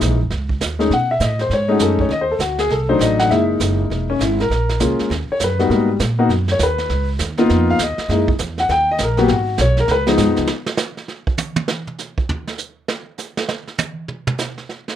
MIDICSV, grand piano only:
0, 0, Header, 1, 2, 480
1, 0, Start_track
1, 0, Tempo, 299700
1, 1459, Time_signature, 4, 2, 24, 8
1, 23957, End_track
2, 0, Start_track
2, 0, Title_t, "Grand piano"
2, 0, Program_c, 0, 0
2, 0, Note_on_c, 0, 52, 68
2, 0, Note_on_c, 0, 56, 60
2, 0, Note_on_c, 0, 58, 57
2, 0, Note_on_c, 0, 63, 69
2, 257, Note_off_c, 0, 52, 0
2, 261, Note_off_c, 0, 58, 0
2, 263, Note_off_c, 0, 56, 0
2, 264, Note_off_c, 0, 63, 0
2, 1262, Note_on_c, 0, 56, 73
2, 1269, Note_on_c, 0, 57, 65
2, 1270, Note_on_c, 0, 61, 69
2, 1275, Note_on_c, 0, 63, 84
2, 1433, Note_off_c, 0, 56, 0
2, 1436, Note_off_c, 0, 57, 0
2, 1437, Note_off_c, 0, 61, 0
2, 1439, Note_off_c, 0, 63, 0
2, 1497, Note_on_c, 0, 78, 93
2, 1769, Note_off_c, 0, 78, 0
2, 1779, Note_on_c, 0, 76, 88
2, 1945, Note_off_c, 0, 76, 0
2, 1958, Note_on_c, 0, 75, 85
2, 2240, Note_off_c, 0, 75, 0
2, 2259, Note_on_c, 0, 72, 86
2, 2424, Note_off_c, 0, 72, 0
2, 2456, Note_on_c, 0, 73, 94
2, 2691, Note_on_c, 0, 56, 74
2, 2697, Note_on_c, 0, 57, 75
2, 2703, Note_on_c, 0, 63, 84
2, 2704, Note_on_c, 0, 61, 74
2, 2728, Note_off_c, 0, 73, 0
2, 2749, Note_on_c, 0, 66, 64
2, 2909, Note_off_c, 0, 66, 0
2, 2914, Note_on_c, 0, 69, 79
2, 3197, Note_off_c, 0, 69, 0
2, 3218, Note_on_c, 0, 73, 77
2, 3329, Note_off_c, 0, 56, 0
2, 3332, Note_off_c, 0, 57, 0
2, 3335, Note_off_c, 0, 61, 0
2, 3335, Note_off_c, 0, 63, 0
2, 3383, Note_off_c, 0, 73, 0
2, 3398, Note_on_c, 0, 75, 100
2, 3544, Note_off_c, 0, 75, 0
2, 3544, Note_on_c, 0, 72, 87
2, 3696, Note_off_c, 0, 72, 0
2, 3707, Note_on_c, 0, 69, 74
2, 3857, Note_on_c, 0, 66, 78
2, 3858, Note_off_c, 0, 69, 0
2, 4148, Note_off_c, 0, 66, 0
2, 4154, Note_on_c, 0, 68, 88
2, 4331, Note_off_c, 0, 68, 0
2, 4349, Note_on_c, 0, 69, 81
2, 4622, Note_on_c, 0, 57, 65
2, 4625, Note_on_c, 0, 54, 76
2, 4631, Note_on_c, 0, 72, 95
2, 4634, Note_off_c, 0, 69, 0
2, 4634, Note_on_c, 0, 62, 68
2, 4634, Note_on_c, 0, 63, 80
2, 4809, Note_off_c, 0, 72, 0
2, 4828, Note_on_c, 0, 75, 92
2, 5113, Note_off_c, 0, 75, 0
2, 5117, Note_on_c, 0, 78, 111
2, 5253, Note_off_c, 0, 57, 0
2, 5255, Note_off_c, 0, 54, 0
2, 5259, Note_off_c, 0, 62, 0
2, 5259, Note_off_c, 0, 63, 0
2, 5292, Note_off_c, 0, 78, 0
2, 5294, Note_on_c, 0, 76, 88
2, 5303, Note_on_c, 0, 56, 66
2, 5308, Note_on_c, 0, 58, 61
2, 5311, Note_on_c, 0, 63, 63
2, 5317, Note_on_c, 0, 64, 68
2, 5475, Note_off_c, 0, 76, 0
2, 6562, Note_on_c, 0, 61, 86
2, 6630, Note_off_c, 0, 56, 0
2, 6632, Note_off_c, 0, 58, 0
2, 6634, Note_off_c, 0, 63, 0
2, 6637, Note_off_c, 0, 64, 0
2, 6733, Note_off_c, 0, 61, 0
2, 6761, Note_on_c, 0, 64, 78
2, 7039, Note_off_c, 0, 64, 0
2, 7059, Note_on_c, 0, 70, 85
2, 7689, Note_on_c, 0, 56, 65
2, 7690, Note_on_c, 0, 58, 53
2, 7694, Note_on_c, 0, 65, 65
2, 7698, Note_on_c, 0, 61, 59
2, 8122, Note_off_c, 0, 70, 0
2, 8171, Note_off_c, 0, 56, 0
2, 8171, Note_off_c, 0, 58, 0
2, 8173, Note_off_c, 0, 65, 0
2, 8175, Note_off_c, 0, 61, 0
2, 8518, Note_on_c, 0, 73, 89
2, 8671, Note_off_c, 0, 73, 0
2, 8714, Note_on_c, 0, 71, 69
2, 8950, Note_on_c, 0, 55, 68
2, 8958, Note_on_c, 0, 59, 65
2, 8964, Note_on_c, 0, 63, 66
2, 8973, Note_on_c, 0, 66, 84
2, 9107, Note_off_c, 0, 59, 0
2, 9111, Note_off_c, 0, 63, 0
2, 9117, Note_off_c, 0, 66, 0
2, 9131, Note_on_c, 0, 58, 63
2, 9131, Note_on_c, 0, 59, 58
2, 9135, Note_on_c, 0, 63, 55
2, 9141, Note_on_c, 0, 66, 72
2, 9401, Note_off_c, 0, 58, 0
2, 9401, Note_off_c, 0, 59, 0
2, 9403, Note_off_c, 0, 63, 0
2, 9406, Note_off_c, 0, 66, 0
2, 9410, Note_off_c, 0, 71, 0
2, 9575, Note_off_c, 0, 55, 0
2, 9908, Note_on_c, 0, 58, 83
2, 9910, Note_on_c, 0, 59, 71
2, 9919, Note_on_c, 0, 63, 76
2, 9924, Note_on_c, 0, 66, 89
2, 10072, Note_off_c, 0, 58, 0
2, 10073, Note_off_c, 0, 59, 0
2, 10077, Note_off_c, 0, 63, 0
2, 10080, Note_off_c, 0, 66, 0
2, 10438, Note_on_c, 0, 73, 103
2, 10590, Note_off_c, 0, 73, 0
2, 10622, Note_on_c, 0, 71, 78
2, 11323, Note_off_c, 0, 71, 0
2, 11825, Note_on_c, 0, 59, 77
2, 11830, Note_on_c, 0, 58, 84
2, 11834, Note_on_c, 0, 63, 82
2, 11839, Note_on_c, 0, 65, 97
2, 12341, Note_on_c, 0, 77, 112
2, 12451, Note_off_c, 0, 59, 0
2, 12454, Note_off_c, 0, 58, 0
2, 12456, Note_off_c, 0, 63, 0
2, 12458, Note_off_c, 0, 65, 0
2, 12500, Note_off_c, 0, 77, 0
2, 12542, Note_on_c, 0, 75, 86
2, 12980, Note_on_c, 0, 56, 67
2, 12989, Note_on_c, 0, 58, 54
2, 12994, Note_on_c, 0, 63, 59
2, 12996, Note_on_c, 0, 64, 70
2, 13242, Note_off_c, 0, 75, 0
2, 13244, Note_off_c, 0, 56, 0
2, 13249, Note_off_c, 0, 58, 0
2, 13251, Note_off_c, 0, 63, 0
2, 13252, Note_off_c, 0, 64, 0
2, 13771, Note_on_c, 0, 78, 100
2, 13935, Note_off_c, 0, 78, 0
2, 13951, Note_on_c, 0, 79, 104
2, 14231, Note_off_c, 0, 79, 0
2, 14278, Note_on_c, 0, 75, 97
2, 14429, Note_off_c, 0, 75, 0
2, 14454, Note_on_c, 0, 70, 84
2, 14705, Note_on_c, 0, 54, 82
2, 14707, Note_on_c, 0, 59, 80
2, 14710, Note_on_c, 0, 58, 77
2, 14715, Note_on_c, 0, 66, 90
2, 14723, Note_off_c, 0, 70, 0
2, 14761, Note_on_c, 0, 67, 78
2, 14869, Note_off_c, 0, 54, 0
2, 14870, Note_off_c, 0, 59, 0
2, 14871, Note_off_c, 0, 58, 0
2, 14874, Note_off_c, 0, 66, 0
2, 14911, Note_off_c, 0, 67, 0
2, 14942, Note_on_c, 0, 66, 88
2, 15363, Note_off_c, 0, 66, 0
2, 15390, Note_on_c, 0, 73, 98
2, 15670, Note_off_c, 0, 73, 0
2, 15694, Note_on_c, 0, 70, 100
2, 15857, Note_off_c, 0, 70, 0
2, 15879, Note_on_c, 0, 71, 90
2, 16050, Note_off_c, 0, 71, 0
2, 16131, Note_on_c, 0, 53, 80
2, 16137, Note_on_c, 0, 56, 70
2, 16140, Note_on_c, 0, 59, 75
2, 16149, Note_on_c, 0, 63, 90
2, 16765, Note_off_c, 0, 53, 0
2, 16767, Note_off_c, 0, 56, 0
2, 16769, Note_off_c, 0, 59, 0
2, 16773, Note_off_c, 0, 63, 0
2, 23957, End_track
0, 0, End_of_file